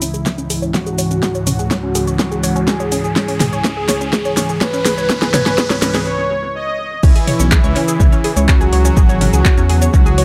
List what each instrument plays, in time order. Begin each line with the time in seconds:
Already playing: analog synth pad C#2 G#2 E3 C#4, supersaw synth E4, riser
0.02 synth arpeggio sound C#4, open hi-hat, shaker
0.14 synth arpeggio sound G#4, shaker
0.26 synth arpeggio sound C#5, kick, snare, shaker
0.38 synth arpeggio sound C#4, shaker
0.50 synth arpeggio sound G#4, open hi-hat, shaker
0.62 synth arpeggio sound C#5, shaker
0.74 synth arpeggio sound C#4, supersaw synth F#4, kick, snare, shaker
0.86 synth arpeggio sound G#4, shaker
0.98 synth arpeggio sound C#5, open hi-hat, shaker
1.11 synth arpeggio sound C#4, shaker
1.23 synth arpeggio sound G#4, kick, snare, shaker
1.35 synth arpeggio sound C#5, shaker
1.47 synth arpeggio sound C#4, open hi-hat, mid tom, shaker
1.59 synth arpeggio sound G#4, shaker
1.71 synth arpeggio sound C#5, kick, snare, shaker
1.83 synth arpeggio sound C#4
1.95 synth arpeggio sound G#4, open hi-hat, shaker
2.07 synth arpeggio sound C#5, shaker
2.19 synth arpeggio sound C#4, supersaw synth F#4, kick, snare, shaker
2.31 synth arpeggio sound G#4, shaker
2.43 synth arpeggio sound C#5, open hi-hat, shaker
2.56 synth arpeggio sound C#4, shaker
2.68 synth arpeggio sound G#4, supersaw synth G#4, kick, snare, shaker
2.80 synth arpeggio sound C#5, shaker
2.92 synth arpeggio sound C#4, open hi-hat, shaker
3.04 synth arpeggio sound G#4, shaker
3.16 supersaw synth G#4, synth arpeggio sound C#5, kick, snare, shaker
3.28 synth arpeggio sound C#4, open hi-hat, shaker
3.40 synth arpeggio sound G#4, snare, open hi-hat, mid tom, shaker
3.53 synth arpeggio sound C#5, shaker
3.64 synth arpeggio sound C#4, kick, snare, shaker
3.77 synth arpeggio sound G#4
3.89 synth arpeggio sound C#5, snare, open hi-hat, shaker
4.01 synth arpeggio sound C#4, shaker
4.13 synth arpeggio sound G#4, kick, snare, shaker
4.25 synth arpeggio sound C#5, shaker
4.37 synth arpeggio sound C#4, snare, open hi-hat, shaker
4.49 synth arpeggio sound G#4, shaker
4.61 supersaw synth B4, synth arpeggio sound C#5, kick, snare, shaker
4.74 synth arpeggio sound C#4, shaker
4.85 synth arpeggio sound G#4, snare, open hi-hat, shaker
4.98 synth arpeggio sound C#5, shaker
5.10 synth arpeggio sound C#4, kick, snare, shaker
5.22 synth arpeggio sound G#4, snare, shaker
5.34 synth arpeggio sound C#5, snare, open hi-hat, mid tom, shaker
5.46 synth arpeggio sound C#4, snare, shaker
5.58 synth arpeggio sound G#4, kick, snare, shaker
5.70 synth arpeggio sound C#5, snare, shaker
5.82 synth arpeggio sound C#4, snare, open hi-hat, shaker
5.95 synth arpeggio sound G#4, snare, shaker
6.06 supersaw synth C#5
6.55 supersaw synth D#5
7.03 detuned saw bass C#2, analog synth pad C#3 E3 C#4 G#4, analog polysynth E3, synth arpeggio sound C#4 C#5, supersaw synth E4, kick, crash, shaker
7.16 synth arpeggio sound G#4 G#5, open hi-hat, shaker
7.27 synth arpeggio sound C#5 C#6, open hi-hat, mid tom
7.40 detuned saw bass B1, synth arpeggio sound C#4 C#5, shaker
7.52 synth arpeggio sound G#4 G#5, kick, clap, shaker
7.64 detuned saw bass C#2, synth arpeggio sound C#5 C#6, shaker
7.76 synth arpeggio sound C#4 C#5, clap, open hi-hat
7.88 synth arpeggio sound G#4 G#5, shaker
8.00 detuned saw bass C#2, synth arpeggio sound C#5 C#6, kick, shaker
8.12 synth arpeggio sound C#4 C#5, shaker
8.24 synth arpeggio sound G#4 G#5, open hi-hat
8.37 detuned saw bass C#2, synth arpeggio sound C#5 C#6, shaker
8.48 analog polysynth F#3, synth arpeggio sound C#4 C#5, supersaw synth F#4, kick, clap, shaker
8.61 synth arpeggio sound G#4 G#5, shaker
8.73 detuned saw bass C#2, synth arpeggio sound C#5 C#6, open hi-hat
8.85 synth arpeggio sound C#4 C#5, shaker
8.97 detuned saw bass G#1, synth arpeggio sound G#4 G#5, kick, shaker
9.09 synth arpeggio sound C#5 C#6, shaker
9.21 synth arpeggio sound C#4 C#5, open hi-hat, mid tom
9.33 detuned saw bass C#2, synth arpeggio sound G#4 G#5, shaker
9.45 synth arpeggio sound C#5 C#6, kick, clap, shaker
9.58 detuned saw bass E2, synth arpeggio sound C#4 C#5, shaker
9.69 synth arpeggio sound G#4 G#5, open hi-hat
9.82 synth arpeggio sound C#5 C#6, shaker
9.93 detuned saw bass C#2, analog polysynth F#3, synth arpeggio sound C#4 C#5, supersaw synth F#4, kick, shaker
10.06 synth arpeggio sound G#4 G#5, shaker
10.18 synth arpeggio sound C#5 C#6, open hi-hat